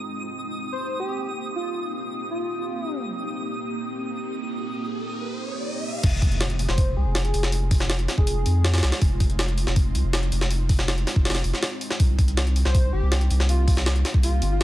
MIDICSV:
0, 0, Header, 1, 8, 480
1, 0, Start_track
1, 0, Key_signature, -4, "minor"
1, 0, Tempo, 372671
1, 94, Time_signature, 4, 2, 24, 8
1, 18847, End_track
2, 0, Start_track
2, 0, Title_t, "Synth texture"
2, 0, Program_c, 0, 99
2, 0, Note_on_c, 0, 87, 78
2, 7300, Note_off_c, 0, 87, 0
2, 18847, End_track
3, 0, Start_track
3, 0, Title_t, "Digital synth lead"
3, 0, Program_c, 1, 84
3, 932, Note_on_c, 1, 72, 94
3, 1221, Note_off_c, 1, 72, 0
3, 1286, Note_on_c, 1, 67, 98
3, 1626, Note_off_c, 1, 67, 0
3, 2007, Note_on_c, 1, 65, 92
3, 2299, Note_off_c, 1, 65, 0
3, 2971, Note_on_c, 1, 65, 92
3, 3261, Note_off_c, 1, 65, 0
3, 3332, Note_on_c, 1, 65, 89
3, 3813, Note_off_c, 1, 65, 0
3, 8612, Note_on_c, 1, 72, 98
3, 8901, Note_off_c, 1, 72, 0
3, 8974, Note_on_c, 1, 68, 99
3, 9310, Note_off_c, 1, 68, 0
3, 9328, Note_on_c, 1, 68, 92
3, 9619, Note_off_c, 1, 68, 0
3, 10531, Note_on_c, 1, 68, 103
3, 11204, Note_off_c, 1, 68, 0
3, 16292, Note_on_c, 1, 72, 98
3, 16581, Note_off_c, 1, 72, 0
3, 16651, Note_on_c, 1, 67, 102
3, 16989, Note_off_c, 1, 67, 0
3, 17374, Note_on_c, 1, 65, 95
3, 17662, Note_off_c, 1, 65, 0
3, 18335, Note_on_c, 1, 65, 98
3, 18623, Note_off_c, 1, 65, 0
3, 18694, Note_on_c, 1, 65, 96
3, 18847, Note_off_c, 1, 65, 0
3, 18847, End_track
4, 0, Start_track
4, 0, Title_t, "Ambient pad"
4, 0, Program_c, 2, 92
4, 0, Note_on_c, 2, 60, 71
4, 0, Note_on_c, 2, 63, 71
4, 90, Note_on_c, 2, 58, 79
4, 92, Note_on_c, 2, 67, 85
4, 7719, Note_off_c, 2, 60, 0
4, 7720, Note_off_c, 2, 58, 0
4, 7720, Note_off_c, 2, 63, 0
4, 7721, Note_off_c, 2, 67, 0
4, 7766, Note_on_c, 2, 63, 74
4, 7768, Note_on_c, 2, 56, 81
4, 7769, Note_on_c, 2, 65, 90
4, 7770, Note_on_c, 2, 60, 73
4, 15398, Note_off_c, 2, 63, 0
4, 15399, Note_off_c, 2, 56, 0
4, 15400, Note_off_c, 2, 65, 0
4, 15455, Note_on_c, 2, 58, 79
4, 15455, Note_on_c, 2, 63, 74
4, 15455, Note_on_c, 2, 67, 90
4, 18847, Note_off_c, 2, 58, 0
4, 18847, Note_off_c, 2, 60, 0
4, 18847, Note_off_c, 2, 63, 0
4, 18847, Note_off_c, 2, 67, 0
4, 18847, End_track
5, 0, Start_track
5, 0, Title_t, "Sub bass"
5, 0, Program_c, 3, 38
5, 7774, Note_on_c, 3, 29, 105
5, 8595, Note_off_c, 3, 29, 0
5, 8612, Note_on_c, 3, 29, 90
5, 8954, Note_off_c, 3, 29, 0
5, 8973, Note_on_c, 3, 36, 89
5, 9082, Note_off_c, 3, 36, 0
5, 9091, Note_on_c, 3, 29, 98
5, 9433, Note_off_c, 3, 29, 0
5, 9454, Note_on_c, 3, 29, 100
5, 10395, Note_off_c, 3, 29, 0
5, 10533, Note_on_c, 3, 29, 90
5, 10874, Note_off_c, 3, 29, 0
5, 10894, Note_on_c, 3, 41, 91
5, 11355, Note_off_c, 3, 41, 0
5, 11378, Note_on_c, 3, 36, 95
5, 11484, Note_off_c, 3, 36, 0
5, 11612, Note_on_c, 3, 29, 101
5, 12434, Note_off_c, 3, 29, 0
5, 12454, Note_on_c, 3, 29, 88
5, 12794, Note_off_c, 3, 29, 0
5, 12812, Note_on_c, 3, 36, 90
5, 12921, Note_off_c, 3, 36, 0
5, 12935, Note_on_c, 3, 29, 96
5, 13275, Note_off_c, 3, 29, 0
5, 13292, Note_on_c, 3, 29, 102
5, 14234, Note_off_c, 3, 29, 0
5, 14375, Note_on_c, 3, 29, 88
5, 14715, Note_off_c, 3, 29, 0
5, 14736, Note_on_c, 3, 29, 100
5, 14843, Note_off_c, 3, 29, 0
5, 15455, Note_on_c, 3, 36, 100
5, 16275, Note_off_c, 3, 36, 0
5, 16298, Note_on_c, 3, 36, 88
5, 16636, Note_off_c, 3, 36, 0
5, 16657, Note_on_c, 3, 31, 92
5, 16764, Note_off_c, 3, 31, 0
5, 16777, Note_on_c, 3, 36, 96
5, 17116, Note_off_c, 3, 36, 0
5, 17136, Note_on_c, 3, 36, 105
5, 18076, Note_off_c, 3, 36, 0
5, 18214, Note_on_c, 3, 36, 85
5, 18554, Note_off_c, 3, 36, 0
5, 18572, Note_on_c, 3, 31, 86
5, 18847, Note_off_c, 3, 31, 0
5, 18847, End_track
6, 0, Start_track
6, 0, Title_t, "Impact"
6, 0, Program_c, 4, 103
6, 7770, Note_on_c, 4, 60, 78
6, 9692, Note_off_c, 4, 60, 0
6, 18847, End_track
7, 0, Start_track
7, 0, Title_t, "Riser"
7, 0, Program_c, 5, 103
7, 3931, Note_on_c, 5, 60, 77
7, 7772, Note_off_c, 5, 60, 0
7, 18847, End_track
8, 0, Start_track
8, 0, Title_t, "Drums"
8, 7773, Note_on_c, 9, 36, 116
8, 7774, Note_on_c, 9, 46, 95
8, 7774, Note_on_c, 9, 49, 98
8, 7902, Note_off_c, 9, 36, 0
8, 7902, Note_off_c, 9, 46, 0
8, 7902, Note_off_c, 9, 49, 0
8, 8013, Note_on_c, 9, 36, 98
8, 8013, Note_on_c, 9, 46, 70
8, 8134, Note_on_c, 9, 42, 43
8, 8141, Note_off_c, 9, 46, 0
8, 8142, Note_off_c, 9, 36, 0
8, 8251, Note_on_c, 9, 38, 119
8, 8251, Note_on_c, 9, 46, 90
8, 8263, Note_off_c, 9, 42, 0
8, 8370, Note_on_c, 9, 42, 45
8, 8379, Note_off_c, 9, 38, 0
8, 8379, Note_off_c, 9, 46, 0
8, 8491, Note_on_c, 9, 46, 68
8, 8499, Note_off_c, 9, 42, 0
8, 8612, Note_on_c, 9, 38, 47
8, 8620, Note_off_c, 9, 46, 0
8, 8730, Note_on_c, 9, 46, 89
8, 8731, Note_on_c, 9, 36, 115
8, 8741, Note_off_c, 9, 38, 0
8, 8859, Note_off_c, 9, 46, 0
8, 8860, Note_off_c, 9, 36, 0
8, 9210, Note_on_c, 9, 38, 117
8, 9210, Note_on_c, 9, 46, 89
8, 9333, Note_on_c, 9, 42, 44
8, 9338, Note_off_c, 9, 38, 0
8, 9338, Note_off_c, 9, 46, 0
8, 9453, Note_on_c, 9, 46, 69
8, 9462, Note_off_c, 9, 42, 0
8, 9572, Note_on_c, 9, 38, 60
8, 9582, Note_off_c, 9, 46, 0
8, 9690, Note_on_c, 9, 46, 93
8, 9701, Note_off_c, 9, 38, 0
8, 9819, Note_off_c, 9, 46, 0
8, 9931, Note_on_c, 9, 46, 86
8, 9933, Note_on_c, 9, 36, 99
8, 10051, Note_on_c, 9, 38, 55
8, 10060, Note_off_c, 9, 46, 0
8, 10061, Note_off_c, 9, 36, 0
8, 10170, Note_off_c, 9, 38, 0
8, 10170, Note_on_c, 9, 38, 119
8, 10170, Note_on_c, 9, 46, 94
8, 10291, Note_on_c, 9, 42, 47
8, 10299, Note_off_c, 9, 38, 0
8, 10299, Note_off_c, 9, 46, 0
8, 10413, Note_on_c, 9, 38, 50
8, 10413, Note_on_c, 9, 46, 68
8, 10419, Note_off_c, 9, 42, 0
8, 10533, Note_on_c, 9, 36, 98
8, 10542, Note_off_c, 9, 38, 0
8, 10542, Note_off_c, 9, 46, 0
8, 10652, Note_on_c, 9, 46, 94
8, 10662, Note_off_c, 9, 36, 0
8, 10781, Note_off_c, 9, 46, 0
8, 10894, Note_on_c, 9, 46, 69
8, 11022, Note_off_c, 9, 46, 0
8, 11135, Note_on_c, 9, 38, 112
8, 11135, Note_on_c, 9, 46, 83
8, 11252, Note_off_c, 9, 38, 0
8, 11252, Note_off_c, 9, 46, 0
8, 11252, Note_on_c, 9, 38, 90
8, 11252, Note_on_c, 9, 46, 68
8, 11309, Note_off_c, 9, 38, 0
8, 11309, Note_off_c, 9, 46, 0
8, 11309, Note_on_c, 9, 38, 92
8, 11309, Note_on_c, 9, 46, 68
8, 11371, Note_off_c, 9, 38, 0
8, 11371, Note_off_c, 9, 46, 0
8, 11371, Note_on_c, 9, 38, 109
8, 11371, Note_on_c, 9, 46, 83
8, 11492, Note_off_c, 9, 38, 0
8, 11492, Note_off_c, 9, 46, 0
8, 11492, Note_on_c, 9, 38, 109
8, 11492, Note_on_c, 9, 46, 80
8, 11612, Note_off_c, 9, 46, 0
8, 11612, Note_on_c, 9, 46, 91
8, 11614, Note_on_c, 9, 36, 114
8, 11620, Note_off_c, 9, 38, 0
8, 11741, Note_off_c, 9, 46, 0
8, 11742, Note_off_c, 9, 36, 0
8, 11854, Note_on_c, 9, 36, 96
8, 11854, Note_on_c, 9, 46, 71
8, 11974, Note_on_c, 9, 42, 43
8, 11982, Note_off_c, 9, 46, 0
8, 11983, Note_off_c, 9, 36, 0
8, 12095, Note_on_c, 9, 38, 120
8, 12095, Note_on_c, 9, 46, 92
8, 12103, Note_off_c, 9, 42, 0
8, 12216, Note_on_c, 9, 42, 46
8, 12223, Note_off_c, 9, 38, 0
8, 12223, Note_off_c, 9, 46, 0
8, 12334, Note_on_c, 9, 46, 70
8, 12344, Note_off_c, 9, 42, 0
8, 12455, Note_on_c, 9, 38, 46
8, 12463, Note_off_c, 9, 46, 0
8, 12573, Note_on_c, 9, 46, 93
8, 12574, Note_on_c, 9, 36, 112
8, 12584, Note_off_c, 9, 38, 0
8, 12702, Note_off_c, 9, 46, 0
8, 12703, Note_off_c, 9, 36, 0
8, 12815, Note_on_c, 9, 46, 68
8, 12944, Note_off_c, 9, 46, 0
8, 13052, Note_on_c, 9, 38, 118
8, 13052, Note_on_c, 9, 46, 91
8, 13175, Note_on_c, 9, 42, 45
8, 13180, Note_off_c, 9, 38, 0
8, 13180, Note_off_c, 9, 46, 0
8, 13292, Note_on_c, 9, 46, 75
8, 13304, Note_off_c, 9, 42, 0
8, 13413, Note_on_c, 9, 38, 60
8, 13421, Note_off_c, 9, 46, 0
8, 13531, Note_on_c, 9, 46, 97
8, 13541, Note_off_c, 9, 38, 0
8, 13660, Note_off_c, 9, 46, 0
8, 13773, Note_on_c, 9, 46, 86
8, 13774, Note_on_c, 9, 36, 96
8, 13895, Note_on_c, 9, 38, 55
8, 13902, Note_off_c, 9, 46, 0
8, 13903, Note_off_c, 9, 36, 0
8, 14016, Note_off_c, 9, 38, 0
8, 14016, Note_on_c, 9, 38, 122
8, 14016, Note_on_c, 9, 46, 91
8, 14139, Note_on_c, 9, 42, 45
8, 14145, Note_off_c, 9, 38, 0
8, 14145, Note_off_c, 9, 46, 0
8, 14259, Note_on_c, 9, 38, 49
8, 14259, Note_on_c, 9, 46, 71
8, 14268, Note_off_c, 9, 42, 0
8, 14376, Note_on_c, 9, 36, 103
8, 14388, Note_off_c, 9, 38, 0
8, 14388, Note_off_c, 9, 46, 0
8, 14493, Note_on_c, 9, 38, 94
8, 14493, Note_on_c, 9, 46, 70
8, 14504, Note_off_c, 9, 36, 0
8, 14554, Note_off_c, 9, 38, 0
8, 14554, Note_off_c, 9, 46, 0
8, 14554, Note_on_c, 9, 38, 95
8, 14554, Note_on_c, 9, 46, 68
8, 14615, Note_off_c, 9, 38, 0
8, 14615, Note_off_c, 9, 46, 0
8, 14615, Note_on_c, 9, 38, 102
8, 14615, Note_on_c, 9, 46, 84
8, 14736, Note_off_c, 9, 46, 0
8, 14736, Note_on_c, 9, 46, 71
8, 14743, Note_off_c, 9, 38, 0
8, 14858, Note_on_c, 9, 38, 36
8, 14865, Note_off_c, 9, 46, 0
8, 14974, Note_off_c, 9, 38, 0
8, 14974, Note_on_c, 9, 38, 124
8, 14974, Note_on_c, 9, 46, 90
8, 15102, Note_off_c, 9, 38, 0
8, 15102, Note_off_c, 9, 46, 0
8, 15213, Note_on_c, 9, 46, 69
8, 15334, Note_on_c, 9, 38, 56
8, 15342, Note_off_c, 9, 46, 0
8, 15454, Note_on_c, 9, 46, 95
8, 15455, Note_on_c, 9, 36, 114
8, 15463, Note_off_c, 9, 38, 0
8, 15582, Note_off_c, 9, 46, 0
8, 15583, Note_off_c, 9, 36, 0
8, 15695, Note_on_c, 9, 36, 98
8, 15696, Note_on_c, 9, 46, 70
8, 15818, Note_on_c, 9, 42, 43
8, 15824, Note_off_c, 9, 36, 0
8, 15824, Note_off_c, 9, 46, 0
8, 15937, Note_on_c, 9, 38, 121
8, 15937, Note_on_c, 9, 46, 93
8, 15947, Note_off_c, 9, 42, 0
8, 16060, Note_on_c, 9, 42, 45
8, 16066, Note_off_c, 9, 38, 0
8, 16066, Note_off_c, 9, 46, 0
8, 16177, Note_on_c, 9, 46, 72
8, 16189, Note_off_c, 9, 42, 0
8, 16298, Note_on_c, 9, 38, 49
8, 16306, Note_off_c, 9, 46, 0
8, 16417, Note_on_c, 9, 36, 116
8, 16418, Note_on_c, 9, 46, 93
8, 16427, Note_off_c, 9, 38, 0
8, 16546, Note_off_c, 9, 36, 0
8, 16547, Note_off_c, 9, 46, 0
8, 16895, Note_on_c, 9, 38, 117
8, 16895, Note_on_c, 9, 46, 94
8, 17016, Note_on_c, 9, 42, 44
8, 17024, Note_off_c, 9, 38, 0
8, 17024, Note_off_c, 9, 46, 0
8, 17137, Note_on_c, 9, 46, 72
8, 17145, Note_off_c, 9, 42, 0
8, 17260, Note_on_c, 9, 38, 59
8, 17266, Note_off_c, 9, 46, 0
8, 17375, Note_on_c, 9, 46, 88
8, 17389, Note_off_c, 9, 38, 0
8, 17504, Note_off_c, 9, 46, 0
8, 17615, Note_on_c, 9, 36, 97
8, 17616, Note_on_c, 9, 46, 83
8, 17737, Note_on_c, 9, 38, 55
8, 17744, Note_off_c, 9, 36, 0
8, 17745, Note_off_c, 9, 46, 0
8, 17855, Note_off_c, 9, 38, 0
8, 17855, Note_on_c, 9, 38, 123
8, 17855, Note_on_c, 9, 46, 91
8, 17976, Note_on_c, 9, 42, 45
8, 17984, Note_off_c, 9, 38, 0
8, 17984, Note_off_c, 9, 46, 0
8, 18096, Note_on_c, 9, 38, 50
8, 18096, Note_on_c, 9, 46, 69
8, 18105, Note_off_c, 9, 42, 0
8, 18215, Note_on_c, 9, 36, 97
8, 18225, Note_off_c, 9, 38, 0
8, 18225, Note_off_c, 9, 46, 0
8, 18333, Note_on_c, 9, 46, 92
8, 18344, Note_off_c, 9, 36, 0
8, 18462, Note_off_c, 9, 46, 0
8, 18572, Note_on_c, 9, 46, 68
8, 18700, Note_off_c, 9, 46, 0
8, 18847, End_track
0, 0, End_of_file